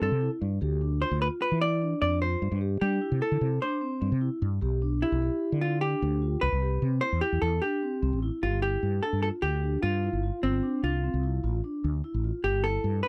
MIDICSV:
0, 0, Header, 1, 4, 480
1, 0, Start_track
1, 0, Tempo, 400802
1, 497, Time_signature, 5, 2, 24, 8
1, 15667, End_track
2, 0, Start_track
2, 0, Title_t, "Hollow-body jazz guitar"
2, 0, Program_c, 0, 26
2, 31, Note_on_c, 0, 69, 72
2, 359, Note_off_c, 0, 69, 0
2, 1217, Note_on_c, 0, 72, 88
2, 1453, Note_off_c, 0, 72, 0
2, 1457, Note_on_c, 0, 71, 89
2, 1522, Note_off_c, 0, 71, 0
2, 1698, Note_on_c, 0, 71, 90
2, 1929, Note_off_c, 0, 71, 0
2, 1934, Note_on_c, 0, 74, 102
2, 2381, Note_off_c, 0, 74, 0
2, 2414, Note_on_c, 0, 74, 105
2, 2650, Note_off_c, 0, 74, 0
2, 2655, Note_on_c, 0, 72, 97
2, 3102, Note_off_c, 0, 72, 0
2, 3370, Note_on_c, 0, 67, 80
2, 3850, Note_off_c, 0, 67, 0
2, 3855, Note_on_c, 0, 69, 84
2, 4301, Note_off_c, 0, 69, 0
2, 4335, Note_on_c, 0, 72, 78
2, 5007, Note_off_c, 0, 72, 0
2, 6016, Note_on_c, 0, 64, 80
2, 6719, Note_off_c, 0, 64, 0
2, 6723, Note_on_c, 0, 65, 80
2, 6955, Note_off_c, 0, 65, 0
2, 6960, Note_on_c, 0, 67, 90
2, 7680, Note_on_c, 0, 71, 96
2, 7708, Note_off_c, 0, 67, 0
2, 8390, Note_off_c, 0, 71, 0
2, 8395, Note_on_c, 0, 72, 98
2, 8627, Note_off_c, 0, 72, 0
2, 8638, Note_on_c, 0, 67, 90
2, 8868, Note_off_c, 0, 67, 0
2, 8881, Note_on_c, 0, 69, 89
2, 9121, Note_on_c, 0, 67, 79
2, 9135, Note_off_c, 0, 69, 0
2, 9799, Note_off_c, 0, 67, 0
2, 10094, Note_on_c, 0, 65, 85
2, 10322, Note_off_c, 0, 65, 0
2, 10327, Note_on_c, 0, 67, 92
2, 10809, Note_on_c, 0, 69, 82
2, 10825, Note_off_c, 0, 67, 0
2, 11034, Note_off_c, 0, 69, 0
2, 11048, Note_on_c, 0, 69, 87
2, 11114, Note_off_c, 0, 69, 0
2, 11283, Note_on_c, 0, 67, 90
2, 11762, Note_off_c, 0, 67, 0
2, 11767, Note_on_c, 0, 65, 91
2, 12444, Note_off_c, 0, 65, 0
2, 12492, Note_on_c, 0, 60, 80
2, 12940, Note_off_c, 0, 60, 0
2, 12979, Note_on_c, 0, 65, 77
2, 13891, Note_off_c, 0, 65, 0
2, 14897, Note_on_c, 0, 67, 85
2, 15134, Note_on_c, 0, 69, 99
2, 15145, Note_off_c, 0, 67, 0
2, 15599, Note_off_c, 0, 69, 0
2, 15604, Note_on_c, 0, 71, 97
2, 15667, Note_off_c, 0, 71, 0
2, 15667, End_track
3, 0, Start_track
3, 0, Title_t, "Vibraphone"
3, 0, Program_c, 1, 11
3, 10, Note_on_c, 1, 60, 78
3, 157, Note_off_c, 1, 60, 0
3, 253, Note_on_c, 1, 64, 72
3, 398, Note_off_c, 1, 64, 0
3, 733, Note_on_c, 1, 67, 74
3, 879, Note_off_c, 1, 67, 0
3, 973, Note_on_c, 1, 62, 78
3, 1119, Note_off_c, 1, 62, 0
3, 1211, Note_on_c, 1, 65, 70
3, 1357, Note_off_c, 1, 65, 0
3, 1451, Note_on_c, 1, 65, 74
3, 1741, Note_off_c, 1, 65, 0
3, 1931, Note_on_c, 1, 64, 79
3, 2077, Note_off_c, 1, 64, 0
3, 2172, Note_on_c, 1, 62, 72
3, 2318, Note_off_c, 1, 62, 0
3, 2413, Note_on_c, 1, 62, 78
3, 2558, Note_off_c, 1, 62, 0
3, 2651, Note_on_c, 1, 65, 76
3, 2797, Note_off_c, 1, 65, 0
3, 3128, Note_on_c, 1, 67, 78
3, 3275, Note_off_c, 1, 67, 0
3, 3367, Note_on_c, 1, 62, 81
3, 3514, Note_off_c, 1, 62, 0
3, 3610, Note_on_c, 1, 64, 74
3, 3756, Note_off_c, 1, 64, 0
3, 3848, Note_on_c, 1, 64, 82
3, 4139, Note_off_c, 1, 64, 0
3, 4327, Note_on_c, 1, 62, 79
3, 4474, Note_off_c, 1, 62, 0
3, 4564, Note_on_c, 1, 60, 74
3, 4712, Note_off_c, 1, 60, 0
3, 4805, Note_on_c, 1, 60, 76
3, 4952, Note_off_c, 1, 60, 0
3, 5045, Note_on_c, 1, 64, 77
3, 5192, Note_off_c, 1, 64, 0
3, 5526, Note_on_c, 1, 67, 79
3, 5673, Note_off_c, 1, 67, 0
3, 5771, Note_on_c, 1, 62, 82
3, 5916, Note_off_c, 1, 62, 0
3, 6013, Note_on_c, 1, 67, 75
3, 6158, Note_off_c, 1, 67, 0
3, 6256, Note_on_c, 1, 67, 82
3, 6544, Note_off_c, 1, 67, 0
3, 6734, Note_on_c, 1, 64, 83
3, 6878, Note_off_c, 1, 64, 0
3, 6978, Note_on_c, 1, 62, 73
3, 7121, Note_off_c, 1, 62, 0
3, 7211, Note_on_c, 1, 62, 76
3, 7356, Note_off_c, 1, 62, 0
3, 7450, Note_on_c, 1, 65, 74
3, 7595, Note_off_c, 1, 65, 0
3, 7930, Note_on_c, 1, 67, 74
3, 8076, Note_off_c, 1, 67, 0
3, 8168, Note_on_c, 1, 60, 79
3, 8314, Note_off_c, 1, 60, 0
3, 8410, Note_on_c, 1, 64, 73
3, 8556, Note_off_c, 1, 64, 0
3, 8650, Note_on_c, 1, 64, 77
3, 8940, Note_off_c, 1, 64, 0
3, 9131, Note_on_c, 1, 62, 76
3, 9276, Note_off_c, 1, 62, 0
3, 9370, Note_on_c, 1, 60, 67
3, 9516, Note_off_c, 1, 60, 0
3, 9609, Note_on_c, 1, 60, 74
3, 9755, Note_off_c, 1, 60, 0
3, 9849, Note_on_c, 1, 64, 71
3, 9994, Note_off_c, 1, 64, 0
3, 10087, Note_on_c, 1, 67, 78
3, 10234, Note_off_c, 1, 67, 0
3, 10327, Note_on_c, 1, 64, 70
3, 10618, Note_off_c, 1, 64, 0
3, 10811, Note_on_c, 1, 62, 65
3, 10956, Note_off_c, 1, 62, 0
3, 11050, Note_on_c, 1, 65, 75
3, 11196, Note_off_c, 1, 65, 0
3, 11294, Note_on_c, 1, 67, 67
3, 11439, Note_off_c, 1, 67, 0
3, 11535, Note_on_c, 1, 62, 73
3, 11824, Note_off_c, 1, 62, 0
3, 12014, Note_on_c, 1, 64, 73
3, 12159, Note_off_c, 1, 64, 0
3, 12253, Note_on_c, 1, 65, 67
3, 12398, Note_off_c, 1, 65, 0
3, 12490, Note_on_c, 1, 65, 82
3, 12636, Note_off_c, 1, 65, 0
3, 12730, Note_on_c, 1, 62, 74
3, 13021, Note_off_c, 1, 62, 0
3, 13218, Note_on_c, 1, 60, 71
3, 13362, Note_off_c, 1, 60, 0
3, 13455, Note_on_c, 1, 64, 76
3, 13600, Note_off_c, 1, 64, 0
3, 13696, Note_on_c, 1, 65, 71
3, 13841, Note_off_c, 1, 65, 0
3, 13940, Note_on_c, 1, 62, 72
3, 14229, Note_off_c, 1, 62, 0
3, 14421, Note_on_c, 1, 64, 74
3, 14564, Note_off_c, 1, 64, 0
3, 14661, Note_on_c, 1, 65, 71
3, 14804, Note_off_c, 1, 65, 0
3, 14902, Note_on_c, 1, 67, 84
3, 15045, Note_off_c, 1, 67, 0
3, 15141, Note_on_c, 1, 64, 76
3, 15429, Note_off_c, 1, 64, 0
3, 15618, Note_on_c, 1, 62, 67
3, 15667, Note_off_c, 1, 62, 0
3, 15667, End_track
4, 0, Start_track
4, 0, Title_t, "Fretless electric bass"
4, 0, Program_c, 2, 35
4, 18, Note_on_c, 2, 43, 82
4, 117, Note_off_c, 2, 43, 0
4, 138, Note_on_c, 2, 48, 78
4, 336, Note_off_c, 2, 48, 0
4, 497, Note_on_c, 2, 43, 88
4, 695, Note_off_c, 2, 43, 0
4, 738, Note_on_c, 2, 38, 86
4, 1232, Note_off_c, 2, 38, 0
4, 1334, Note_on_c, 2, 38, 83
4, 1533, Note_off_c, 2, 38, 0
4, 1816, Note_on_c, 2, 52, 81
4, 2311, Note_off_c, 2, 52, 0
4, 2417, Note_on_c, 2, 41, 79
4, 2812, Note_off_c, 2, 41, 0
4, 2897, Note_on_c, 2, 43, 87
4, 2995, Note_off_c, 2, 43, 0
4, 3013, Note_on_c, 2, 43, 83
4, 3311, Note_off_c, 2, 43, 0
4, 3371, Note_on_c, 2, 55, 83
4, 3571, Note_off_c, 2, 55, 0
4, 3732, Note_on_c, 2, 48, 85
4, 3832, Note_off_c, 2, 48, 0
4, 3971, Note_on_c, 2, 50, 78
4, 4072, Note_off_c, 2, 50, 0
4, 4087, Note_on_c, 2, 48, 93
4, 4288, Note_off_c, 2, 48, 0
4, 4809, Note_on_c, 2, 43, 89
4, 4911, Note_off_c, 2, 43, 0
4, 4933, Note_on_c, 2, 48, 81
4, 5131, Note_off_c, 2, 48, 0
4, 5291, Note_on_c, 2, 43, 93
4, 5491, Note_off_c, 2, 43, 0
4, 5533, Note_on_c, 2, 35, 93
4, 6028, Note_off_c, 2, 35, 0
4, 6133, Note_on_c, 2, 35, 89
4, 6331, Note_off_c, 2, 35, 0
4, 6614, Note_on_c, 2, 50, 87
4, 7108, Note_off_c, 2, 50, 0
4, 7213, Note_on_c, 2, 38, 88
4, 7609, Note_off_c, 2, 38, 0
4, 7695, Note_on_c, 2, 36, 87
4, 7793, Note_off_c, 2, 36, 0
4, 7811, Note_on_c, 2, 36, 84
4, 8109, Note_off_c, 2, 36, 0
4, 8167, Note_on_c, 2, 48, 86
4, 8367, Note_off_c, 2, 48, 0
4, 8532, Note_on_c, 2, 40, 77
4, 8632, Note_off_c, 2, 40, 0
4, 8772, Note_on_c, 2, 40, 79
4, 8871, Note_off_c, 2, 40, 0
4, 8887, Note_on_c, 2, 40, 89
4, 9087, Note_off_c, 2, 40, 0
4, 9611, Note_on_c, 2, 36, 81
4, 9711, Note_off_c, 2, 36, 0
4, 9734, Note_on_c, 2, 33, 79
4, 9931, Note_off_c, 2, 33, 0
4, 10094, Note_on_c, 2, 31, 85
4, 10490, Note_off_c, 2, 31, 0
4, 10571, Note_on_c, 2, 43, 86
4, 10770, Note_off_c, 2, 43, 0
4, 10932, Note_on_c, 2, 43, 68
4, 11131, Note_off_c, 2, 43, 0
4, 11288, Note_on_c, 2, 38, 77
4, 11687, Note_off_c, 2, 38, 0
4, 11773, Note_on_c, 2, 43, 77
4, 12071, Note_off_c, 2, 43, 0
4, 12132, Note_on_c, 2, 31, 75
4, 12332, Note_off_c, 2, 31, 0
4, 12496, Note_on_c, 2, 31, 85
4, 12694, Note_off_c, 2, 31, 0
4, 12972, Note_on_c, 2, 36, 78
4, 13271, Note_off_c, 2, 36, 0
4, 13338, Note_on_c, 2, 36, 84
4, 13634, Note_off_c, 2, 36, 0
4, 13698, Note_on_c, 2, 33, 78
4, 13896, Note_off_c, 2, 33, 0
4, 14183, Note_on_c, 2, 38, 81
4, 14379, Note_off_c, 2, 38, 0
4, 14543, Note_on_c, 2, 33, 80
4, 14739, Note_off_c, 2, 33, 0
4, 14897, Note_on_c, 2, 31, 90
4, 15293, Note_off_c, 2, 31, 0
4, 15377, Note_on_c, 2, 43, 91
4, 15576, Note_off_c, 2, 43, 0
4, 15667, End_track
0, 0, End_of_file